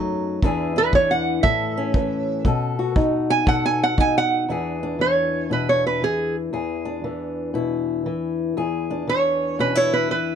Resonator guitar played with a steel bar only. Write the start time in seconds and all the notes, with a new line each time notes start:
0.78 B4
0.95 C#5
1.11 F#5
1.43 E5
3.30 G#5
3.48 F#5
3.66 G#5
3.83 F#5
4.00 G#5
4.18 F#5
5.01 C#5
5.53 B4
5.69 C#5
5.87 B4
6.04 G#4
9.09 C#5
9.60 B4
9.77 C#5
9.93 B4
10.11 B4